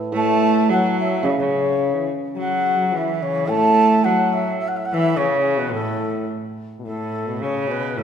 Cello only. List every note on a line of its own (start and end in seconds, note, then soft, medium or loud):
0.13 0.71 A3 loud
0.69 1.26 F#3 medium
1.24 1.38 C#3 medium
1.39 2.06 C#3 medium
2.38 2.96 F#3 medium
2.95 3.50 E3 medium
3.49 4.06 A3 loud
4.05 4.60 F#3 medium
4.92 5.18 E3 medium
5.17 5.74 C#3 medium
5.73 6.29 A2 medium
6.87 7.43 A2 medium
7.42 7.99 C#3 medium
7.98 8.03 A2 medium